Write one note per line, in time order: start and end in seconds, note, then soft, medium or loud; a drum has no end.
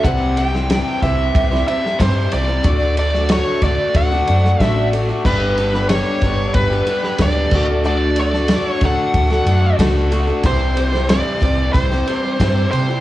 0.05 0.80 C2 medium
0.05 0.68 C3 medium
0.05 0.36 E3 medium
0.05 0.36 G3 loud
0.05 0.37 C4 loud
0.05 0.38 E4 medium
0.05 0.38 G4 loud
0.05 0.38 C5 medium
0.05 0.38 F#5 loud
0.05 kick loud
0.05 ride medium
0.37 0.68 E3 medium
0.37 0.54 G3 medium
0.37 0.53 C4 medium
0.37 0.55 E4 medium
0.37 0.52 G4 medium
0.37 0.53 C5 medium
0.37 1.02 G5 loud
0.37 ride medium
0.53 0.69 G3 medium
0.53 0.70 C4 medium
0.53 0.71 E4 soft
0.53 0.71 G4 medium
0.53 0.70 C5 medium
0.53 snare soft
0.69 1.35 C3 medium
0.69 1.00 E3 loud
0.69 1.01 G3 medium
0.69 1.02 C4 medium
0.69 1.03 E4 medium
0.69 1.03 G4 loud
0.69 1.04 C5 medium
0.69 snare loud
0.69 ride medium
1.01 1.28 C2 medium
1.01 1.65 E3 medium
1.01 1.52 G3 medium
1.01 1.50 C4 medium
1.01 1.51 E4 medium
1.01 1.49 G4 medium
1.01 1.66 E5 loud
1.01 kick medium
1.01 ride medium
1.05 1.50 C5 medium
1.35 1.60 C2 loud
1.35 kick loud
1.35 ride medium
1.50 1.67 G3 medium
1.50 1.67 C4 medium
1.50 1.68 E4 medium
1.50 1.68 G4 medium
1.50 1.68 C5 medium
1.50 snare soft
1.67 1.99 E3 medium
1.67 1.84 G3 medium
1.67 1.83 C4 medium
1.67 2.00 E4 medium
1.67 1.82 G4 medium
1.67 2.00 C5 medium
1.67 2.01 E5 medium
1.67 ride medium
1.84 1.99 G3 medium
1.84 2.00 C4 medium
1.84 2.00 G4 medium
1.84 snare soft
1.99 2.26 G2 medium
1.99 2.49 C3 medium
1.99 2.31 E3 medium
1.99 2.17 G3 loud
1.99 2.15 C4 medium
1.99 2.33 E4 medium
1.99 2.14 G4 loud
1.99 2.33 C5 medium
1.99 kick medium
1.99 snare loud
1.99 ride loud
2.15 2.31 G3 medium
2.15 2.32 C4 medium
2.15 2.33 G4 medium
2.32 2.58 C2 medium
2.32 2.63 E3 medium
2.32 2.50 G3 medium
2.32 2.49 C4 medium
2.32 2.48 E4 medium
2.32 2.47 G4 medium
2.32 2.47 C5 medium
2.32 2.94 D5 loud
2.32 ride medium
2.48 2.64 G3 medium
2.48 2.64 C4 medium
2.48 2.64 E4 soft
2.48 2.63 G4 medium
2.48 2.65 C5 medium
2.64 3.41 D2 loud
2.64 2.96 D3 loud
2.64 2.97 A3 medium
2.64 2.99 D4 loud
2.64 2.99 F#4 loud
2.64 2.98 D5 medium
2.64 kick loud
2.64 ride medium
2.97 3.29 D3 medium
2.97 3.14 A3 medium
2.97 3.14 D4 medium
2.97 3.12 F#4 medium
2.97 3.32 D5 medium
2.97 3.13 D5 medium
2.97 ride medium
3.13 3.29 A3 medium
3.13 3.31 D4 medium
3.13 3.31 F#4 medium
3.13 3.30 D5 medium
3.13 snare soft
3.29 3.61 D3 medium
3.29 3.62 A3 medium
3.29 3.64 D4 loud
3.29 3.64 F#4 loud
3.29 3.61 C#5 medium
3.29 snare loud
3.29 ride loud
3.62 3.75 D2 medium
3.62 4.27 D3 medium
3.62 4.12 A3 medium
3.62 4.12 D4 medium
3.62 4.10 F#4 medium
3.62 3.97 D5 medium
3.62 4.11 D5 medium
3.62 kick medium
3.62 ride medium
3.94 4.20 D2 loud
3.94 4.62 F#5 medium
3.94 kick loud
3.94 ride loud
4.11 4.28 A3 medium
4.11 4.30 D4 medium
4.11 4.29 F#4 medium
4.11 4.28 D5 medium
4.27 4.53 F#2 medium
4.27 4.59 D3 medium
4.27 4.45 A3 medium
4.27 4.45 D4 medium
4.27 4.43 F#4 medium
4.27 4.61 D5 medium
4.27 ride medium
4.44 4.60 A3 medium
4.44 4.61 D4 medium
4.44 4.61 F#4 medium
4.44 snare soft
4.60 5.10 A1 medium
4.60 4.91 D3 loud
4.60 4.78 A3 medium
4.60 4.78 D4 loud
4.60 4.75 F#4 loud
4.60 4.94 D5 medium
4.60 4.89 E5 medium
4.60 kick medium
4.60 snare loud
4.60 ride loud
4.77 4.92 A3 medium
4.77 4.94 D4 medium
4.77 4.93 F#4 medium
4.92 5.23 D3 medium
4.92 5.09 A3 medium
4.92 5.09 D4 medium
4.92 5.07 F#4 medium
4.92 5.07 D5 medium
4.92 ride medium
5.08 5.24 A3 medium
5.08 5.26 D4 medium
5.08 5.23 F#4 medium
5.08 5.25 D5 medium
5.24 6.00 G1 medium
5.24 5.87 G2 medium
5.24 5.88 D3 loud
5.24 5.55 G3 medium
5.24 5.56 B3 loud
5.24 5.57 D4 loud
5.24 5.58 G4 loud
5.24 5.89 B4 medium
5.24 5.58 B4 medium
5.24 kick loud
5.24 crash medium
5.56 5.74 G3 medium
5.56 5.74 B3 medium
5.56 5.74 D4 medium
5.56 5.72 G4 medium
5.56 5.72 B4 medium
5.56 ride medium
5.73 5.88 G3 medium
5.73 5.88 B3 medium
5.73 5.90 D4 medium
5.73 5.90 G4 medium
5.73 5.90 B4 medium
5.73 snare soft
5.88 6.54 G2 medium
5.88 6.54 D3 medium
5.88 6.20 G3 medium
5.88 6.21 B3 loud
5.88 6.22 D4 medium
5.88 6.22 G4 medium
5.88 6.23 B4 medium
5.88 6.54 C#5 medium
5.88 snare loud
5.88 ride medium
6.21 6.48 G1 medium
6.21 6.71 G3 medium
6.21 6.70 B3 medium
6.21 6.69 D4 medium
6.21 6.69 G4 medium
6.21 kick medium
6.21 ride medium
6.25 6.69 B4 medium
6.54 6.80 G1 medium
6.54 7.21 B4 medium
6.54 kick loud
6.54 ride medium
6.70 6.85 G3 medium
6.70 6.85 B3 medium
6.70 6.86 D4 medium
6.70 6.87 G4 medium
6.70 6.87 B4 medium
6.86 7.03 G3 medium
6.86 7.03 B3 medium
6.86 7.02 D4 medium
6.86 7.01 G4 medium
6.86 7.20 B4 medium
6.86 ride medium
7.03 7.18 G3 medium
7.03 7.19 B3 medium
7.03 7.19 D4 medium
7.03 7.20 G4 medium
7.03 snare soft
7.18 7.45 D2 loud
7.18 7.50 G2 medium
7.18 7.50 D3 medium
7.18 7.37 G3 loud
7.18 7.36 B3 loud
7.18 7.35 D4 loud
7.18 7.34 G4 loud
7.18 7.53 B4 medium
7.18 7.82 D5 medium
7.18 kick medium
7.18 snare loud
7.18 ride loud
7.35 7.51 G3 medium
7.35 7.51 B3 medium
7.35 7.50 D4 medium
7.35 7.50 G4 medium
7.51 8.53 D2 medium
7.51 7.83 D3 medium
7.51 7.70 A3 medium
7.51 7.69 D4 medium
7.51 7.67 F#4 loud
7.51 kick loud
7.51 crash medium
7.55 7.67 A4 medium
7.68 7.84 A3 medium
7.68 7.85 D4 medium
7.68 7.86 F#4 medium
7.68 7.84 A4 medium
7.84 8.15 D3 loud
7.84 8.17 A3 loud
7.84 8.17 D4 loud
7.84 8.18 F#4 loud
7.84 8.18 A4 loud
7.84 8.19 D5 loud
8.16 8.47 D3 medium
8.16 8.35 A3 medium
8.16 8.33 D4 medium
8.16 8.32 F#4 medium
8.16 8.33 A4 medium
8.16 ride medium
8.21 8.67 D5 medium
8.34 8.48 A3 medium
8.34 8.49 D4 medium
8.34 8.50 F#4 medium
8.34 8.50 A4 medium
8.34 snare soft
8.48 8.80 D3 loud
8.48 8.81 A3 loud
8.48 8.81 D4 loud
8.48 8.83 F#4 loud
8.48 8.83 A4 medium
8.48 snare loud
8.48 ride loud
8.67 8.86 C#5 medium
8.81 8.95 D2 medium
8.81 9.45 D3 medium
8.81 9.31 A3 medium
8.81 9.30 D4 medium
8.81 9.29 F#4 medium
8.81 9.29 A4 medium
8.81 kick medium
8.81 ride medium
8.85 9.77 F#5 medium
9.14 9.39 D2 loud
9.14 kick loud
9.14 ride loud
9.30 9.46 A3 medium
9.30 9.46 D4 medium
9.30 9.47 F#4 medium
9.30 9.47 A4 medium
9.30 snare soft
9.46 9.72 F#2 loud
9.46 9.78 D3 medium
9.46 9.63 A3 medium
9.46 9.62 D4 medium
9.46 9.61 F#4 medium
9.46 9.79 A4 medium
9.46 ride medium
9.62 9.79 A3 medium
9.62 9.79 D4 medium
9.62 9.80 F#4 medium
9.79 10.30 C#2 medium
9.79 10.09 D3 medium
9.79 9.96 A3 loud
9.79 9.95 D4 loud
9.79 9.94 F#4 loud
9.79 10.12 A4 loud
9.79 kick medium
9.79 snare loud
9.79 ride loud
9.95 10.10 A3 medium
9.95 10.11 D4 medium
9.95 10.12 F#4 medium
10.10 10.42 D3 medium
10.10 10.29 A3 medium
10.10 10.27 D4 medium
10.10 10.26 F#4 medium
10.10 10.26 A4 medium
10.10 ride medium
10.27 10.43 A3 medium
10.27 10.43 D4 medium
10.27 10.42 F#4 medium
10.27 10.44 A4 medium
10.43 11.20 C2 loud
10.43 11.08 C3 medium
10.43 10.74 E3 loud
10.43 10.75 G3 loud
10.43 10.76 C4 loud
10.43 10.77 E4 medium
10.43 10.76 G4 loud
10.43 10.78 C5 medium
10.43 11.09 C5 loud
10.43 kick loud
10.43 ride medium
10.75 11.08 E3 medium
10.75 10.93 G3 medium
10.75 10.92 C4 medium
10.75 10.92 E4 medium
10.75 10.91 G4 medium
10.75 10.91 C5 medium
10.75 ride medium
10.92 11.09 G3 medium
10.92 11.10 C4 medium
10.92 11.09 E4 soft
10.92 11.10 G4 medium
10.92 11.09 C5 medium
10.92 snare soft
11.09 11.75 C3 medium
11.09 11.41 E3 loud
11.09 11.41 G3 medium
11.09 11.42 C4 loud
11.09 11.42 E4 medium
11.09 11.43 G4 loud
11.09 11.42 C5 medium
11.09 11.73 D5 loud
11.09 snare loud
11.09 ride loud
11.42 11.68 C2 loud
11.42 12.06 E3 medium
11.42 11.91 G3 medium
11.42 11.90 C4 medium
11.42 11.91 E4 medium
11.42 11.89 G4 medium
11.42 11.90 C5 medium
11.42 kick medium
11.42 ride medium
11.73 12.00 C2 medium
11.73 12.70 C5 loud
11.73 kick loud
11.73 ride medium
11.90 12.07 G3 medium
11.90 12.07 C4 medium
11.90 12.08 E4 medium
11.90 12.08 G4 medium
11.90 12.08 C5 medium
11.90 snare soft
12.07 12.38 E3 medium
12.07 12.24 G3 medium
12.07 12.23 C4 medium
12.07 12.40 E4 medium
12.07 12.21 G4 medium
12.07 12.40 C5 medium
12.07 ride medium
12.22 12.38 G3 medium
12.22 12.39 C4 medium
12.22 12.39 G4 medium
12.38 12.65 G2 loud
12.38 12.88 C3 medium
12.38 12.70 E3 loud
12.38 12.55 G3 medium
12.38 12.55 C4 loud
12.38 12.73 E4 medium
12.38 12.53 G4 loud
12.38 12.74 C5 medium
12.38 kick medium
12.38 snare loud
12.38 ride loud
12.54 12.71 G3 medium
12.54 12.72 C4 medium
12.54 12.72 G4 medium
12.71 12.99 C3 medium
12.71 13.00 E3 medium
12.71 12.90 G3 medium
12.71 12.89 C4 medium
12.71 12.88 E4 medium
12.71 12.88 G4 medium
12.71 13.00 C5 medium
12.71 12.87 C5 medium
12.71 ride medium
12.89 13.00 G3 medium
12.89 13.00 C4 medium
12.89 13.00 E4 medium
12.89 13.00 G4 medium
12.89 13.00 C5 soft